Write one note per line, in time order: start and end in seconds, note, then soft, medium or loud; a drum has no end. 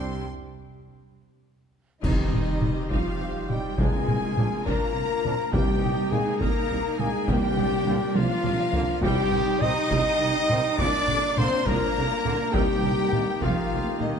0.00 0.23 C2 medium
0.00 0.23 C3 medium
0.00 0.22 G3 medium
0.00 0.27 G3 medium
0.00 0.25 C4 medium
0.00 0.27 C4 medium
0.00 0.22 D4 medium
0.00 0.27 D4 medium
0.00 0.22 G4 medium
0.00 0.27 G4 medium
0.00 0.22 C5 medium
0.00 0.27 C5 medium
0.00 0.27 C6 medium
2.02 2.15 C2 medium
2.02 2.11 C2 medium
2.02 2.87 C3 loud
2.02 2.87 D#3 medium
2.02 3.74 G3 medium
2.02 2.86 D#4 loud
2.02 2.86 D#4 medium
2.02 3.74 D#4 medium
2.02 2.30 D#4 medium
2.02 3.74 G4 medium
2.02 3.74 C5 medium
2.02 2.86 D#5 medium
2.02 concert bass drum medium
2.02 taiko loud
2.02 crash medium
2.31 2.40 C2 medium
2.31 2.44 C2 medium
2.31 2.39 C4 medium
2.31 taiko mid medium
2.61 2.69 C2 medium
2.61 2.73 C2 medium
2.61 2.69 G3 medium
2.61 2.72 G3 medium
2.61 2.71 D#4 medium
2.61 taiko mid medium
2.90 3.02 C2 medium
2.90 2.98 C2 medium
2.90 3.49 F3 medium
2.90 3.18 D#4 medium
2.90 3.51 F4 medium
2.90 3.49 F4 medium
2.90 3.49 F5 medium
2.90 taiko medium
3.19 3.27 C2 medium
3.19 3.31 C2 medium
3.19 3.28 C4 medium
3.49 3.61 C2 medium
3.49 3.57 C2 medium
3.49 3.57 G3 medium
3.49 3.59 G3 medium
3.49 3.78 G3 medium
3.49 3.59 D#4 medium
3.49 3.80 G4 medium
3.49 3.79 G4 medium
3.49 3.78 G5 medium
3.49 taiko mid medium
3.78 3.90 C2 medium
3.78 3.87 C2 medium
3.78 4.62 C3 loud
3.78 4.66 G#3 medium
3.78 9.05 A#3 medium
3.78 5.54 D4 medium
3.78 4.06 D4 medium
3.78 5.51 F4 medium
3.78 5.54 F4 medium
3.78 4.68 G#4 medium
3.78 4.65 G#4 loud
3.78 9.05 A#4 medium
3.78 4.64 G#5 loud
3.78 4.66 G#5 medium
3.78 taiko loud
4.06 4.18 C2 medium
4.06 4.15 C2 medium
4.06 4.17 A#3 medium
4.06 taiko mid medium
4.35 4.47 C2 medium
4.35 4.45 C2 medium
4.35 4.44 F3 medium
4.35 4.48 F3 medium
4.35 4.47 D4 medium
4.35 taiko mid medium
4.65 4.77 C2 medium
4.65 4.74 C2 medium
4.65 5.54 A#3 medium
4.65 4.93 D4 medium
4.65 5.54 A#4 loud
4.65 5.55 A#4 medium
4.65 5.52 A#5 loud
4.65 5.54 A#5 loud
4.65 taiko medium
4.94 5.06 C2 medium
4.94 5.03 C2 medium
4.94 5.03 A#3 medium
5.24 5.36 C2 medium
5.24 5.32 C2 medium
5.24 5.32 F3 medium
5.24 5.35 F3 medium
5.24 5.34 D4 medium
5.24 taiko mid medium
5.52 5.64 C2 medium
5.52 5.61 C2 loud
5.52 6.37 C3 loud
5.52 6.11 G3 medium
5.52 5.80 A#3 medium
5.52 7.28 D#4 medium
5.52 7.29 D#4 medium
5.52 6.10 G4 loud
5.52 6.14 G4 medium
5.52 6.10 G5 loud
5.52 6.11 G5 medium
5.52 taiko loud
5.82 5.94 C2 medium
5.82 5.91 C2 medium
5.82 5.90 G3 medium
5.82 taiko mid medium
6.10 6.23 C2 medium
6.10 6.20 C2 medium
6.10 6.19 D#3 medium
6.10 6.22 D#3 medium
6.10 6.40 G#3 medium
6.10 6.22 A#3 medium
6.10 6.40 G#4 loud
6.10 6.41 G#4 medium
6.10 6.41 G#5 medium
6.10 taiko mid medium
6.40 6.52 C2 loud
6.40 6.49 C2 medium
6.40 6.68 A#3 medium
6.40 6.99 A#3 medium
6.40 6.99 A#4 loud
6.40 7.01 A#4 loud
6.40 6.98 A#5 loud
6.40 taiko medium
6.70 6.78 C2 medium
6.70 6.81 C2 medium
6.70 6.79 G3 medium
6.97 7.06 C2 medium
6.97 7.10 C2 medium
6.97 7.08 D#3 medium
6.97 7.10 D#3 medium
6.97 7.28 G#3 medium
6.97 7.10 A#3 medium
6.97 7.29 G#4 loud
6.97 7.30 G#4 medium
6.97 7.27 G#5 medium
6.97 7.28 G#5 loud
6.97 taiko mid medium
7.28 7.36 C2 loud
7.28 7.40 C2 loud
7.28 8.12 C3 loud
7.28 8.16 G3 loud
7.28 7.56 A#3 loud
7.28 9.04 D4 medium
7.28 9.04 F4 medium
7.28 8.16 G4 loud
7.28 8.17 G4 loud
7.28 8.16 G5 loud
7.28 taiko loud
7.57 7.69 C2 medium
7.57 7.65 C2 medium
7.57 7.66 F3 medium
7.57 taiko mid medium
7.86 7.94 C2 medium
7.86 7.99 C2 medium
7.86 7.97 D3 medium
7.86 7.95 D3 medium
7.86 7.97 A#3 medium
7.86 taiko mid medium
8.15 8.24 C2 loud
8.15 8.28 C2 loud
8.15 9.04 F3 loud
8.15 8.43 A#3 medium
8.15 8.76 F4 loud
8.15 9.02 F4 loud
8.15 9.02 F5 loud
8.15 9.03 F5 loud
8.15 taiko high medium
8.45 8.53 C2 medium
8.45 8.57 C2 medium
8.45 8.53 F3 medium
8.45 taiko mid loud
8.74 8.82 C2 medium
8.74 8.86 C2 medium
8.74 8.85 D3 medium
8.74 8.82 D3 medium
8.74 8.85 A#3 loud
8.74 taiko low loud
9.03 9.11 C2 loud
9.03 9.16 C2 loud
9.03 9.87 C3 loud
9.03 9.62 G3 loud
9.03 9.31 G3 loud
9.03 10.80 G3 loud
9.03 10.79 D#4 loud
9.03 10.80 D#4 loud
9.03 9.62 G4 loud
9.03 9.63 G4 loud
9.03 10.80 G4 loud
9.03 10.79 C5 loud
9.03 9.61 G5 loud
9.03 taiko loud
9.32 9.41 C2 medium
9.32 9.45 C2 medium
9.32 9.42 D#3 medium
9.32 taiko mid medium
9.60 9.70 C2 medium
9.60 9.74 C2 medium
9.60 9.70 C3 medium
9.60 9.72 D#3 medium
9.60 9.72 C4 medium
9.60 10.77 D#4 loud
9.60 10.61 D#5 loud
9.60 10.78 D#5 loud
9.60 10.76 D#6 loud
9.60 10.77 D#6 loud
9.60 taiko mid medium
9.91 9.99 C2 loud
9.91 10.03 C2 loud
9.91 10.18 G3 loud
9.91 taiko medium
10.20 10.28 C2 medium
10.20 10.33 C2 medium
10.20 10.29 D#3 medium
10.49 10.57 C2 medium
10.49 10.62 C2 medium
10.49 10.59 C3 medium
10.49 10.60 D#3 loud
10.49 10.61 C4 medium
10.49 taiko mid medium
10.78 10.86 C2 loud
10.78 10.92 C2 loud
10.78 11.07 F3 loud
10.78 14.19 A#3 loud
10.78 11.38 D4 loud
10.78 12.52 D4 loud
10.78 12.55 D4 loud
10.78 12.55 F4 loud
10.78 14.19 A#4 loud
10.78 11.39 D5 loud
10.78 11.36 D5 loud
10.78 11.37 D6 loud
10.78 11.38 D6 loud
10.78 taiko loud
11.08 11.16 C2 medium
11.08 11.21 C2 medium
11.08 11.18 D3 medium
11.08 taiko mid medium
11.37 11.45 C2 medium
11.37 11.49 C2 medium
11.37 11.48 D3 medium
11.37 11.47 D3 medium
11.37 11.48 A#3 loud
11.37 11.67 C4 loud
11.37 11.68 C5 loud
11.37 11.66 C5 loud
11.37 11.66 C6 loud
11.37 11.67 C6 loud
11.37 taiko mid medium
11.66 11.74 C2 loud
11.66 11.78 C2 loud
11.66 11.94 F3 loud
11.66 12.53 A#3 loud
11.66 12.56 A#4 loud
11.66 12.55 A#4 loud
11.66 12.54 A#5 loud
11.66 12.53 A#5 loud
11.66 taiko loud
11.96 12.08 C2 medium
11.96 12.04 C2 medium
11.96 12.05 D3 medium
12.25 12.33 C2 medium
12.25 12.37 C2 medium
12.25 12.33 D3 medium
12.25 12.36 D3 loud
12.25 12.36 A#3 medium
12.25 taiko mid medium
12.52 12.62 C2 loud
12.52 12.66 C2 loud
12.52 13.38 C3 loud
12.52 12.81 D#3 loud
12.52 13.43 G3 loud
12.52 14.19 A#3 loud
12.52 14.19 D#4 medium
12.52 13.41 G4 loud
12.52 14.19 G4 medium
12.52 13.44 G4 loud
12.52 13.40 G5 loud
12.52 13.43 G5 loud
12.52 taiko loud
12.83 12.92 C2 medium
12.83 12.95 C2 medium
12.83 12.91 D#3 medium
12.83 taiko mid medium
13.12 13.24 C2 medium
13.12 13.21 C2 medium
13.12 13.20 D#3 medium
13.12 13.23 D#3 medium
13.12 13.23 A#3 medium
13.12 taiko mid medium
13.41 13.53 C2 medium
13.41 13.50 C2 medium
13.41 13.69 D#3 medium
13.41 14.00 F3 medium
13.41 14.00 F4 loud
13.41 14.02 F4 medium
13.41 14.00 F5 medium
13.41 14.01 F5 loud
13.41 taiko medium
13.70 13.83 C2 medium
13.70 13.79 C2 medium
13.70 13.78 D#3 medium
14.00 14.12 C2 medium
14.00 14.08 C2 medium
14.00 14.08 D#3 medium
14.00 14.11 D#3 medium
14.00 14.19 D#3 medium
14.00 14.11 A#3 medium
14.00 14.19 D#4 medium
14.00 14.19 D#5 medium
14.00 taiko mid medium